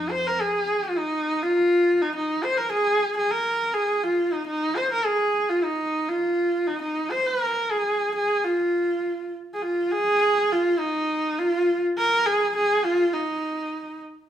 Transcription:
Already playing: F2 D#4
0.11 C5
0.27 A#4
0.41 G#4
0.83 F4
0.98 D#4
1.43 F4
2.02 D#4
2.16 D#4
2.44 C5
2.57 A#4
2.72 G#4
3.17 G#4
3.31 A#4
3.74 G#4
4.04 F4
4.33 D#4
4.48 D#4
4.77 C5
4.92 A#4
5.06 G#4
5.50 F4
5.64 D#4
6.09 F4
6.67 D#4
6.82 D#4
7.11 C5
7.26 A#4
7.71 G#4
8.15 G#4
8.44 F4
9.54 G#4
9.62 F4
9.91 G#4
10.52 F4
10.80 D#4
11.39 F4
11.98 A#4
12.26 G#4
12.56 G#4
12.85 F4
13.13 D#4

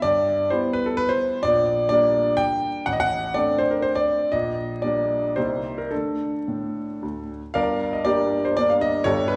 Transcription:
0.02 G2 D5
0.50 G3 B3 E4 C5
0.73 B4
0.86 A4
0.97 B4
1.09 C5
1.43 A#1 D5
1.89 G3 A#3 D4 D5
2.37 G5
2.86 A1 F#5
2.93 D#5
3.00 F#5
3.34 A3 C4 D4 D5
3.58 C5
3.71 A#4
3.82 C5
3.95 D5
4.32 A#1 D#5
4.82 G3 A#3 D4 D5
5.36 C2 G3 A#3 D#4 C5
5.78 A#4
5.91 D3 A3 D4 A4
6.48 A2
7.02 D2
7.54 G1 G2 A#4 D5 F5
7.93 D#5
8.05 G3 A#3 D4 G4 A#4 D5
8.45 C5
8.57 G3 A#3 D4 D5
8.70 F5
8.81 D#5
9.04 G1 G2 G4 A4 C#5
9.28 B4

